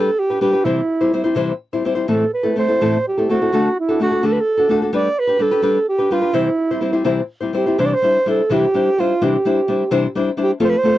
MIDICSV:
0, 0, Header, 1, 3, 480
1, 0, Start_track
1, 0, Key_signature, 0, "major"
1, 0, Tempo, 475059
1, 660, Time_signature, 6, 3, 24, 8
1, 8826, Tempo, 466563
1, 11136, End_track
2, 0, Start_track
2, 0, Title_t, "Alto saxophone"
2, 0, Program_c, 0, 65
2, 0, Note_on_c, 0, 69, 75
2, 197, Note_on_c, 0, 67, 79
2, 212, Note_off_c, 0, 69, 0
2, 409, Note_off_c, 0, 67, 0
2, 415, Note_on_c, 0, 67, 78
2, 649, Note_on_c, 0, 64, 67
2, 664, Note_off_c, 0, 67, 0
2, 1376, Note_off_c, 0, 64, 0
2, 2119, Note_on_c, 0, 69, 65
2, 2346, Note_off_c, 0, 69, 0
2, 2360, Note_on_c, 0, 71, 62
2, 2583, Note_off_c, 0, 71, 0
2, 2613, Note_on_c, 0, 72, 82
2, 3059, Note_off_c, 0, 72, 0
2, 3107, Note_on_c, 0, 67, 67
2, 3338, Note_on_c, 0, 66, 79
2, 3353, Note_off_c, 0, 67, 0
2, 3816, Note_off_c, 0, 66, 0
2, 3833, Note_on_c, 0, 64, 73
2, 4041, Note_off_c, 0, 64, 0
2, 4064, Note_on_c, 0, 66, 78
2, 4302, Note_on_c, 0, 69, 77
2, 4317, Note_off_c, 0, 66, 0
2, 4369, Note_on_c, 0, 71, 64
2, 4384, Note_off_c, 0, 69, 0
2, 4448, Note_on_c, 0, 69, 75
2, 4464, Note_off_c, 0, 71, 0
2, 4822, Note_off_c, 0, 69, 0
2, 5004, Note_on_c, 0, 74, 81
2, 5246, Note_on_c, 0, 71, 82
2, 5261, Note_off_c, 0, 74, 0
2, 5474, Note_on_c, 0, 69, 88
2, 5489, Note_off_c, 0, 71, 0
2, 5942, Note_off_c, 0, 69, 0
2, 5948, Note_on_c, 0, 67, 73
2, 6186, Note_on_c, 0, 65, 82
2, 6201, Note_off_c, 0, 67, 0
2, 6416, Note_on_c, 0, 64, 69
2, 6431, Note_off_c, 0, 65, 0
2, 7135, Note_off_c, 0, 64, 0
2, 7641, Note_on_c, 0, 67, 74
2, 7875, Note_on_c, 0, 72, 82
2, 7890, Note_off_c, 0, 67, 0
2, 7942, Note_on_c, 0, 74, 67
2, 7957, Note_off_c, 0, 72, 0
2, 8025, Note_on_c, 0, 72, 93
2, 8040, Note_off_c, 0, 74, 0
2, 8357, Note_off_c, 0, 72, 0
2, 8374, Note_on_c, 0, 69, 72
2, 8617, Note_on_c, 0, 67, 82
2, 8632, Note_off_c, 0, 69, 0
2, 9093, Note_on_c, 0, 65, 82
2, 9108, Note_off_c, 0, 67, 0
2, 9347, Note_on_c, 0, 67, 67
2, 9362, Note_off_c, 0, 65, 0
2, 10298, Note_off_c, 0, 67, 0
2, 10567, Note_on_c, 0, 67, 84
2, 10661, Note_off_c, 0, 67, 0
2, 10789, Note_on_c, 0, 72, 79
2, 10840, Note_on_c, 0, 71, 86
2, 10856, Note_off_c, 0, 72, 0
2, 10927, Note_on_c, 0, 72, 92
2, 10942, Note_off_c, 0, 71, 0
2, 11136, Note_off_c, 0, 72, 0
2, 11136, End_track
3, 0, Start_track
3, 0, Title_t, "Nylon-string guitar"
3, 0, Program_c, 1, 24
3, 303, Note_on_c, 1, 71, 43
3, 312, Note_on_c, 1, 67, 37
3, 322, Note_on_c, 1, 62, 36
3, 404, Note_off_c, 1, 62, 0
3, 412, Note_off_c, 1, 71, 0
3, 413, Note_off_c, 1, 67, 0
3, 415, Note_on_c, 1, 55, 53
3, 417, Note_on_c, 1, 62, 54
3, 424, Note_on_c, 1, 71, 58
3, 425, Note_on_c, 1, 67, 49
3, 523, Note_off_c, 1, 71, 0
3, 535, Note_on_c, 1, 71, 39
3, 537, Note_off_c, 1, 55, 0
3, 538, Note_off_c, 1, 62, 0
3, 538, Note_off_c, 1, 67, 0
3, 550, Note_on_c, 1, 67, 37
3, 552, Note_on_c, 1, 62, 36
3, 655, Note_on_c, 1, 48, 56
3, 656, Note_off_c, 1, 71, 0
3, 656, Note_on_c, 1, 52, 62
3, 658, Note_on_c, 1, 55, 56
3, 660, Note_off_c, 1, 62, 0
3, 663, Note_off_c, 1, 67, 0
3, 664, Note_on_c, 1, 60, 65
3, 666, Note_on_c, 1, 72, 62
3, 667, Note_on_c, 1, 64, 55
3, 804, Note_off_c, 1, 48, 0
3, 804, Note_off_c, 1, 52, 0
3, 805, Note_off_c, 1, 55, 0
3, 808, Note_off_c, 1, 60, 0
3, 809, Note_off_c, 1, 72, 0
3, 810, Note_off_c, 1, 64, 0
3, 1018, Note_on_c, 1, 72, 44
3, 1024, Note_on_c, 1, 64, 50
3, 1026, Note_on_c, 1, 60, 42
3, 1037, Note_on_c, 1, 55, 37
3, 1130, Note_off_c, 1, 55, 0
3, 1135, Note_off_c, 1, 60, 0
3, 1139, Note_off_c, 1, 64, 0
3, 1139, Note_off_c, 1, 72, 0
3, 1142, Note_on_c, 1, 55, 42
3, 1147, Note_on_c, 1, 60, 43
3, 1149, Note_on_c, 1, 72, 57
3, 1151, Note_on_c, 1, 64, 52
3, 1239, Note_off_c, 1, 72, 0
3, 1247, Note_off_c, 1, 64, 0
3, 1252, Note_off_c, 1, 55, 0
3, 1252, Note_on_c, 1, 72, 51
3, 1256, Note_off_c, 1, 60, 0
3, 1259, Note_on_c, 1, 64, 44
3, 1264, Note_on_c, 1, 55, 41
3, 1268, Note_on_c, 1, 60, 41
3, 1359, Note_off_c, 1, 55, 0
3, 1362, Note_on_c, 1, 48, 64
3, 1363, Note_off_c, 1, 60, 0
3, 1369, Note_off_c, 1, 64, 0
3, 1369, Note_off_c, 1, 72, 0
3, 1371, Note_on_c, 1, 55, 62
3, 1372, Note_on_c, 1, 52, 73
3, 1375, Note_on_c, 1, 60, 74
3, 1381, Note_on_c, 1, 64, 72
3, 1381, Note_on_c, 1, 72, 67
3, 1521, Note_off_c, 1, 48, 0
3, 1525, Note_off_c, 1, 55, 0
3, 1526, Note_off_c, 1, 52, 0
3, 1527, Note_off_c, 1, 60, 0
3, 1530, Note_off_c, 1, 72, 0
3, 1531, Note_off_c, 1, 64, 0
3, 1747, Note_on_c, 1, 72, 46
3, 1748, Note_on_c, 1, 64, 40
3, 1759, Note_on_c, 1, 60, 31
3, 1767, Note_on_c, 1, 55, 36
3, 1855, Note_off_c, 1, 55, 0
3, 1858, Note_off_c, 1, 60, 0
3, 1867, Note_on_c, 1, 55, 49
3, 1869, Note_off_c, 1, 64, 0
3, 1869, Note_off_c, 1, 72, 0
3, 1870, Note_on_c, 1, 60, 52
3, 1880, Note_on_c, 1, 72, 60
3, 1882, Note_on_c, 1, 64, 54
3, 1958, Note_off_c, 1, 72, 0
3, 1965, Note_off_c, 1, 64, 0
3, 1970, Note_off_c, 1, 60, 0
3, 1971, Note_on_c, 1, 72, 42
3, 1975, Note_off_c, 1, 55, 0
3, 1978, Note_on_c, 1, 64, 38
3, 1982, Note_on_c, 1, 60, 35
3, 1987, Note_on_c, 1, 55, 31
3, 2089, Note_off_c, 1, 60, 0
3, 2093, Note_off_c, 1, 64, 0
3, 2099, Note_off_c, 1, 55, 0
3, 2100, Note_on_c, 1, 45, 54
3, 2101, Note_off_c, 1, 72, 0
3, 2101, Note_on_c, 1, 60, 60
3, 2103, Note_on_c, 1, 52, 59
3, 2103, Note_on_c, 1, 57, 61
3, 2106, Note_on_c, 1, 64, 59
3, 2111, Note_on_c, 1, 69, 52
3, 2254, Note_off_c, 1, 45, 0
3, 2255, Note_off_c, 1, 60, 0
3, 2256, Note_off_c, 1, 52, 0
3, 2256, Note_off_c, 1, 57, 0
3, 2257, Note_off_c, 1, 64, 0
3, 2260, Note_off_c, 1, 69, 0
3, 2457, Note_on_c, 1, 69, 47
3, 2462, Note_on_c, 1, 64, 41
3, 2469, Note_on_c, 1, 60, 34
3, 2476, Note_on_c, 1, 57, 38
3, 2572, Note_off_c, 1, 57, 0
3, 2581, Note_off_c, 1, 60, 0
3, 2584, Note_on_c, 1, 57, 48
3, 2586, Note_off_c, 1, 64, 0
3, 2588, Note_off_c, 1, 69, 0
3, 2593, Note_on_c, 1, 60, 50
3, 2598, Note_on_c, 1, 64, 47
3, 2603, Note_on_c, 1, 69, 52
3, 2699, Note_off_c, 1, 69, 0
3, 2702, Note_off_c, 1, 64, 0
3, 2710, Note_off_c, 1, 60, 0
3, 2711, Note_off_c, 1, 57, 0
3, 2711, Note_on_c, 1, 69, 44
3, 2714, Note_on_c, 1, 64, 38
3, 2722, Note_on_c, 1, 60, 36
3, 2726, Note_on_c, 1, 57, 37
3, 2830, Note_off_c, 1, 57, 0
3, 2835, Note_off_c, 1, 69, 0
3, 2836, Note_off_c, 1, 64, 0
3, 2836, Note_on_c, 1, 45, 53
3, 2840, Note_off_c, 1, 60, 0
3, 2840, Note_on_c, 1, 52, 56
3, 2842, Note_on_c, 1, 57, 61
3, 2846, Note_on_c, 1, 69, 64
3, 2851, Note_on_c, 1, 64, 52
3, 2852, Note_on_c, 1, 60, 64
3, 2986, Note_off_c, 1, 45, 0
3, 2988, Note_off_c, 1, 52, 0
3, 2989, Note_off_c, 1, 57, 0
3, 2991, Note_off_c, 1, 69, 0
3, 2993, Note_off_c, 1, 64, 0
3, 2994, Note_off_c, 1, 60, 0
3, 3209, Note_on_c, 1, 64, 34
3, 3209, Note_on_c, 1, 69, 43
3, 3219, Note_on_c, 1, 60, 39
3, 3223, Note_on_c, 1, 57, 35
3, 3315, Note_off_c, 1, 57, 0
3, 3323, Note_off_c, 1, 60, 0
3, 3327, Note_off_c, 1, 64, 0
3, 3327, Note_off_c, 1, 69, 0
3, 3328, Note_on_c, 1, 57, 46
3, 3335, Note_on_c, 1, 60, 51
3, 3339, Note_on_c, 1, 64, 56
3, 3341, Note_on_c, 1, 69, 53
3, 3437, Note_off_c, 1, 64, 0
3, 3437, Note_off_c, 1, 69, 0
3, 3445, Note_off_c, 1, 60, 0
3, 3446, Note_off_c, 1, 57, 0
3, 3449, Note_on_c, 1, 69, 38
3, 3450, Note_on_c, 1, 64, 40
3, 3456, Note_on_c, 1, 57, 33
3, 3457, Note_on_c, 1, 60, 34
3, 3551, Note_off_c, 1, 57, 0
3, 3559, Note_on_c, 1, 50, 56
3, 3562, Note_off_c, 1, 69, 0
3, 3563, Note_on_c, 1, 57, 57
3, 3566, Note_off_c, 1, 64, 0
3, 3568, Note_off_c, 1, 60, 0
3, 3571, Note_on_c, 1, 66, 59
3, 3572, Note_on_c, 1, 62, 62
3, 3574, Note_on_c, 1, 69, 70
3, 3709, Note_off_c, 1, 50, 0
3, 3711, Note_off_c, 1, 57, 0
3, 3715, Note_off_c, 1, 66, 0
3, 3716, Note_off_c, 1, 62, 0
3, 3717, Note_off_c, 1, 69, 0
3, 3927, Note_on_c, 1, 69, 50
3, 3939, Note_on_c, 1, 66, 44
3, 3942, Note_on_c, 1, 62, 36
3, 4035, Note_off_c, 1, 62, 0
3, 4038, Note_on_c, 1, 57, 54
3, 4039, Note_off_c, 1, 66, 0
3, 4044, Note_off_c, 1, 69, 0
3, 4048, Note_on_c, 1, 62, 46
3, 4052, Note_on_c, 1, 66, 53
3, 4057, Note_on_c, 1, 69, 51
3, 4135, Note_off_c, 1, 69, 0
3, 4143, Note_off_c, 1, 66, 0
3, 4147, Note_on_c, 1, 69, 45
3, 4153, Note_off_c, 1, 62, 0
3, 4156, Note_on_c, 1, 66, 38
3, 4157, Note_off_c, 1, 57, 0
3, 4166, Note_on_c, 1, 62, 35
3, 4262, Note_off_c, 1, 62, 0
3, 4270, Note_off_c, 1, 66, 0
3, 4270, Note_off_c, 1, 69, 0
3, 4274, Note_on_c, 1, 50, 68
3, 4274, Note_on_c, 1, 62, 59
3, 4278, Note_on_c, 1, 57, 61
3, 4282, Note_on_c, 1, 66, 68
3, 4287, Note_on_c, 1, 69, 61
3, 4419, Note_off_c, 1, 50, 0
3, 4419, Note_off_c, 1, 62, 0
3, 4421, Note_off_c, 1, 57, 0
3, 4423, Note_off_c, 1, 66, 0
3, 4426, Note_off_c, 1, 69, 0
3, 4622, Note_on_c, 1, 69, 49
3, 4634, Note_on_c, 1, 66, 38
3, 4643, Note_on_c, 1, 62, 37
3, 4731, Note_off_c, 1, 62, 0
3, 4738, Note_on_c, 1, 57, 57
3, 4743, Note_off_c, 1, 66, 0
3, 4744, Note_off_c, 1, 69, 0
3, 4744, Note_on_c, 1, 62, 52
3, 4755, Note_on_c, 1, 66, 57
3, 4756, Note_on_c, 1, 69, 64
3, 4858, Note_off_c, 1, 69, 0
3, 4860, Note_off_c, 1, 57, 0
3, 4863, Note_off_c, 1, 62, 0
3, 4865, Note_off_c, 1, 66, 0
3, 4870, Note_on_c, 1, 69, 44
3, 4878, Note_on_c, 1, 66, 40
3, 4890, Note_on_c, 1, 62, 39
3, 4966, Note_off_c, 1, 62, 0
3, 4977, Note_off_c, 1, 66, 0
3, 4978, Note_on_c, 1, 55, 65
3, 4978, Note_on_c, 1, 62, 75
3, 4981, Note_on_c, 1, 67, 66
3, 4984, Note_off_c, 1, 69, 0
3, 4990, Note_on_c, 1, 71, 71
3, 5125, Note_off_c, 1, 55, 0
3, 5125, Note_off_c, 1, 62, 0
3, 5126, Note_off_c, 1, 67, 0
3, 5131, Note_off_c, 1, 71, 0
3, 5328, Note_on_c, 1, 71, 46
3, 5341, Note_on_c, 1, 67, 49
3, 5347, Note_on_c, 1, 62, 41
3, 5437, Note_off_c, 1, 62, 0
3, 5442, Note_off_c, 1, 67, 0
3, 5445, Note_on_c, 1, 55, 44
3, 5449, Note_on_c, 1, 62, 47
3, 5451, Note_off_c, 1, 71, 0
3, 5454, Note_on_c, 1, 67, 59
3, 5463, Note_on_c, 1, 71, 58
3, 5558, Note_off_c, 1, 71, 0
3, 5563, Note_off_c, 1, 67, 0
3, 5569, Note_off_c, 1, 55, 0
3, 5570, Note_on_c, 1, 71, 51
3, 5571, Note_off_c, 1, 62, 0
3, 5576, Note_on_c, 1, 67, 44
3, 5587, Note_on_c, 1, 62, 34
3, 5673, Note_off_c, 1, 62, 0
3, 5680, Note_off_c, 1, 67, 0
3, 5680, Note_off_c, 1, 71, 0
3, 5681, Note_on_c, 1, 55, 65
3, 5685, Note_on_c, 1, 62, 64
3, 5692, Note_on_c, 1, 67, 58
3, 5692, Note_on_c, 1, 71, 74
3, 5833, Note_off_c, 1, 55, 0
3, 5835, Note_off_c, 1, 62, 0
3, 5838, Note_off_c, 1, 67, 0
3, 5838, Note_off_c, 1, 71, 0
3, 6046, Note_on_c, 1, 71, 42
3, 6054, Note_on_c, 1, 67, 44
3, 6061, Note_on_c, 1, 62, 35
3, 6161, Note_off_c, 1, 62, 0
3, 6167, Note_off_c, 1, 71, 0
3, 6169, Note_off_c, 1, 67, 0
3, 6170, Note_on_c, 1, 55, 45
3, 6173, Note_on_c, 1, 62, 53
3, 6181, Note_on_c, 1, 67, 56
3, 6183, Note_on_c, 1, 71, 54
3, 6268, Note_off_c, 1, 71, 0
3, 6280, Note_off_c, 1, 67, 0
3, 6280, Note_on_c, 1, 71, 45
3, 6285, Note_off_c, 1, 62, 0
3, 6288, Note_off_c, 1, 55, 0
3, 6292, Note_on_c, 1, 67, 37
3, 6297, Note_on_c, 1, 62, 36
3, 6396, Note_on_c, 1, 48, 62
3, 6399, Note_off_c, 1, 67, 0
3, 6401, Note_off_c, 1, 71, 0
3, 6401, Note_on_c, 1, 52, 58
3, 6402, Note_off_c, 1, 62, 0
3, 6403, Note_on_c, 1, 64, 64
3, 6406, Note_on_c, 1, 55, 55
3, 6406, Note_on_c, 1, 60, 65
3, 6410, Note_on_c, 1, 72, 69
3, 6546, Note_off_c, 1, 48, 0
3, 6549, Note_off_c, 1, 52, 0
3, 6550, Note_off_c, 1, 64, 0
3, 6551, Note_off_c, 1, 55, 0
3, 6552, Note_off_c, 1, 60, 0
3, 6554, Note_off_c, 1, 72, 0
3, 6778, Note_on_c, 1, 72, 43
3, 6779, Note_on_c, 1, 64, 44
3, 6785, Note_on_c, 1, 60, 35
3, 6793, Note_on_c, 1, 55, 36
3, 6866, Note_off_c, 1, 55, 0
3, 6876, Note_off_c, 1, 60, 0
3, 6878, Note_on_c, 1, 55, 46
3, 6880, Note_off_c, 1, 72, 0
3, 6881, Note_off_c, 1, 64, 0
3, 6888, Note_on_c, 1, 60, 50
3, 6892, Note_on_c, 1, 72, 48
3, 6893, Note_on_c, 1, 64, 52
3, 6988, Note_off_c, 1, 64, 0
3, 6988, Note_off_c, 1, 72, 0
3, 6998, Note_off_c, 1, 60, 0
3, 7000, Note_on_c, 1, 64, 48
3, 7000, Note_on_c, 1, 72, 47
3, 7003, Note_off_c, 1, 55, 0
3, 7011, Note_on_c, 1, 60, 42
3, 7014, Note_on_c, 1, 55, 38
3, 7107, Note_off_c, 1, 55, 0
3, 7113, Note_off_c, 1, 64, 0
3, 7116, Note_off_c, 1, 60, 0
3, 7116, Note_on_c, 1, 48, 65
3, 7117, Note_off_c, 1, 72, 0
3, 7119, Note_on_c, 1, 55, 69
3, 7121, Note_on_c, 1, 52, 62
3, 7125, Note_on_c, 1, 64, 75
3, 7128, Note_on_c, 1, 60, 69
3, 7129, Note_on_c, 1, 72, 62
3, 7273, Note_off_c, 1, 48, 0
3, 7275, Note_off_c, 1, 55, 0
3, 7276, Note_off_c, 1, 52, 0
3, 7278, Note_off_c, 1, 64, 0
3, 7279, Note_off_c, 1, 60, 0
3, 7280, Note_off_c, 1, 72, 0
3, 7482, Note_on_c, 1, 72, 43
3, 7492, Note_on_c, 1, 64, 35
3, 7501, Note_on_c, 1, 60, 36
3, 7503, Note_on_c, 1, 55, 32
3, 7596, Note_off_c, 1, 55, 0
3, 7604, Note_off_c, 1, 60, 0
3, 7609, Note_on_c, 1, 55, 48
3, 7612, Note_off_c, 1, 72, 0
3, 7614, Note_off_c, 1, 64, 0
3, 7616, Note_on_c, 1, 60, 53
3, 7622, Note_on_c, 1, 72, 63
3, 7626, Note_on_c, 1, 64, 58
3, 7730, Note_off_c, 1, 72, 0
3, 7735, Note_off_c, 1, 55, 0
3, 7737, Note_off_c, 1, 64, 0
3, 7739, Note_off_c, 1, 60, 0
3, 7742, Note_on_c, 1, 72, 43
3, 7750, Note_on_c, 1, 64, 43
3, 7756, Note_on_c, 1, 55, 37
3, 7761, Note_on_c, 1, 60, 42
3, 7855, Note_off_c, 1, 55, 0
3, 7859, Note_off_c, 1, 72, 0
3, 7860, Note_off_c, 1, 64, 0
3, 7865, Note_on_c, 1, 52, 60
3, 7866, Note_off_c, 1, 60, 0
3, 7867, Note_on_c, 1, 48, 64
3, 7867, Note_on_c, 1, 55, 58
3, 7870, Note_on_c, 1, 62, 63
3, 7871, Note_on_c, 1, 72, 71
3, 7872, Note_on_c, 1, 64, 64
3, 8012, Note_off_c, 1, 52, 0
3, 8013, Note_off_c, 1, 48, 0
3, 8013, Note_off_c, 1, 55, 0
3, 8014, Note_off_c, 1, 62, 0
3, 8015, Note_off_c, 1, 64, 0
3, 8015, Note_off_c, 1, 72, 0
3, 8105, Note_on_c, 1, 55, 52
3, 8114, Note_on_c, 1, 62, 52
3, 8120, Note_on_c, 1, 72, 53
3, 8124, Note_on_c, 1, 64, 60
3, 8250, Note_off_c, 1, 55, 0
3, 8255, Note_off_c, 1, 62, 0
3, 8258, Note_off_c, 1, 72, 0
3, 8260, Note_off_c, 1, 64, 0
3, 8345, Note_on_c, 1, 55, 46
3, 8348, Note_on_c, 1, 62, 48
3, 8358, Note_on_c, 1, 64, 57
3, 8364, Note_on_c, 1, 72, 61
3, 8489, Note_off_c, 1, 55, 0
3, 8491, Note_off_c, 1, 62, 0
3, 8496, Note_off_c, 1, 64, 0
3, 8499, Note_off_c, 1, 72, 0
3, 8584, Note_on_c, 1, 48, 58
3, 8592, Note_on_c, 1, 52, 57
3, 8594, Note_on_c, 1, 55, 66
3, 8595, Note_on_c, 1, 62, 69
3, 8597, Note_on_c, 1, 72, 62
3, 8602, Note_on_c, 1, 64, 69
3, 8733, Note_off_c, 1, 48, 0
3, 8737, Note_off_c, 1, 52, 0
3, 8738, Note_off_c, 1, 55, 0
3, 8738, Note_off_c, 1, 62, 0
3, 8740, Note_off_c, 1, 72, 0
3, 8742, Note_off_c, 1, 64, 0
3, 8832, Note_on_c, 1, 55, 59
3, 8836, Note_on_c, 1, 62, 55
3, 8844, Note_on_c, 1, 64, 55
3, 8851, Note_on_c, 1, 72, 62
3, 8977, Note_off_c, 1, 55, 0
3, 8979, Note_off_c, 1, 62, 0
3, 8983, Note_off_c, 1, 64, 0
3, 8987, Note_off_c, 1, 72, 0
3, 9082, Note_on_c, 1, 55, 52
3, 9085, Note_on_c, 1, 62, 48
3, 9096, Note_on_c, 1, 64, 61
3, 9099, Note_on_c, 1, 72, 64
3, 9222, Note_off_c, 1, 55, 0
3, 9224, Note_off_c, 1, 62, 0
3, 9229, Note_off_c, 1, 64, 0
3, 9231, Note_off_c, 1, 72, 0
3, 9319, Note_on_c, 1, 52, 54
3, 9319, Note_on_c, 1, 55, 57
3, 9320, Note_on_c, 1, 48, 58
3, 9322, Note_on_c, 1, 64, 69
3, 9325, Note_on_c, 1, 62, 69
3, 9332, Note_on_c, 1, 72, 68
3, 9465, Note_off_c, 1, 48, 0
3, 9465, Note_off_c, 1, 52, 0
3, 9465, Note_off_c, 1, 55, 0
3, 9466, Note_off_c, 1, 64, 0
3, 9468, Note_off_c, 1, 62, 0
3, 9471, Note_off_c, 1, 72, 0
3, 9563, Note_on_c, 1, 55, 52
3, 9570, Note_on_c, 1, 64, 58
3, 9575, Note_on_c, 1, 62, 55
3, 9580, Note_on_c, 1, 72, 65
3, 9705, Note_off_c, 1, 55, 0
3, 9709, Note_off_c, 1, 64, 0
3, 9711, Note_off_c, 1, 62, 0
3, 9714, Note_off_c, 1, 72, 0
3, 9798, Note_on_c, 1, 62, 62
3, 9799, Note_on_c, 1, 55, 54
3, 9807, Note_on_c, 1, 64, 47
3, 9815, Note_on_c, 1, 72, 53
3, 9941, Note_off_c, 1, 62, 0
3, 9942, Note_off_c, 1, 55, 0
3, 9946, Note_off_c, 1, 64, 0
3, 9950, Note_off_c, 1, 72, 0
3, 10033, Note_on_c, 1, 48, 68
3, 10036, Note_on_c, 1, 52, 72
3, 10038, Note_on_c, 1, 55, 65
3, 10038, Note_on_c, 1, 62, 79
3, 10041, Note_on_c, 1, 64, 78
3, 10044, Note_on_c, 1, 72, 83
3, 10182, Note_off_c, 1, 48, 0
3, 10183, Note_off_c, 1, 52, 0
3, 10184, Note_off_c, 1, 62, 0
3, 10185, Note_off_c, 1, 55, 0
3, 10186, Note_off_c, 1, 64, 0
3, 10187, Note_off_c, 1, 72, 0
3, 10285, Note_on_c, 1, 55, 61
3, 10290, Note_on_c, 1, 62, 64
3, 10300, Note_on_c, 1, 72, 62
3, 10301, Note_on_c, 1, 64, 66
3, 10425, Note_off_c, 1, 55, 0
3, 10427, Note_off_c, 1, 62, 0
3, 10432, Note_off_c, 1, 72, 0
3, 10433, Note_off_c, 1, 64, 0
3, 10507, Note_on_c, 1, 55, 51
3, 10512, Note_on_c, 1, 62, 60
3, 10516, Note_on_c, 1, 64, 55
3, 10523, Note_on_c, 1, 72, 61
3, 10653, Note_off_c, 1, 55, 0
3, 10655, Note_off_c, 1, 62, 0
3, 10658, Note_off_c, 1, 64, 0
3, 10661, Note_off_c, 1, 72, 0
3, 10744, Note_on_c, 1, 53, 63
3, 10745, Note_on_c, 1, 60, 69
3, 10746, Note_on_c, 1, 65, 75
3, 10748, Note_on_c, 1, 57, 69
3, 10750, Note_on_c, 1, 69, 63
3, 10893, Note_off_c, 1, 53, 0
3, 10894, Note_off_c, 1, 60, 0
3, 10894, Note_off_c, 1, 65, 0
3, 10895, Note_off_c, 1, 57, 0
3, 10896, Note_off_c, 1, 69, 0
3, 10985, Note_on_c, 1, 57, 56
3, 10995, Note_on_c, 1, 60, 59
3, 11001, Note_on_c, 1, 65, 51
3, 11008, Note_on_c, 1, 69, 64
3, 11131, Note_off_c, 1, 57, 0
3, 11136, Note_off_c, 1, 60, 0
3, 11136, Note_off_c, 1, 65, 0
3, 11136, Note_off_c, 1, 69, 0
3, 11136, End_track
0, 0, End_of_file